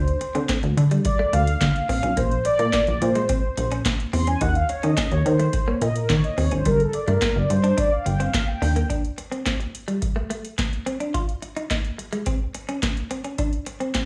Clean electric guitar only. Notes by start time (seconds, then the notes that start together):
0.21 muted clean electric guitar stroke
0.35 C4
0.49 C4
0.63 muted clean electric guitar stroke
0.91 G3
1.05 muted clean electric guitar stroke
1.19 A3
1.33 A3
1.61 muted clean electric guitar stroke
1.89 C4
2.03 C#4
2.17 A#3
2.45 muted clean electric guitar stroke
2.59 A#3
2.73 A#3
3.02 muted clean electric guitar stroke
3.16 G#3
3.29 C4
3.58 muted clean electric guitar stroke
3.72 C#4
3.86 muted clean electric guitar stroke
4.13 C4
4.28 C#4
4.41 D#4
4.69 muted clean electric guitar stroke
4.83 C#4
4.97 C#4
5.12 muted clean electric guitar stroke
5.40 A3
5.54 muted clean electric guitar stroke
5.68 A#3
5.82 A#3
6.10 muted clean electric guitar stroke
6.38 C4
6.52 C#4
6.66 G3
6.94 muted clean electric guitar stroke
7.08 A3
7.22 A#3
7.50 muted clean electric guitar stroke
7.64 D4
7.78 D4
8.06 muted clean electric guitar stroke
8.20 C4
8.34 muted clean electric guitar stroke
8.62 D4
8.76 A#3
8.90 D4
9.18 muted clean electric guitar stroke
9.32 C4
9.46 C4
9.60 muted clean electric guitar stroke
9.88 G3
10.02 muted clean electric guitar stroke
10.16 A3
10.30 A3
10.58 muted clean electric guitar stroke
10.86 C4
11.00 D4
11.14 F4
11.42 muted clean electric guitar stroke
11.57 D#4
11.71 D#4
11.98 muted clean electric guitar stroke
12.13 G#3
12.27 C4
12.55 muted clean electric guitar stroke
12.69 C#4
12.83 muted clean electric guitar stroke
13.11 C4
13.25 C#4
13.39 D4
13.67 muted clean electric guitar stroke
13.80 C4
13.95 C4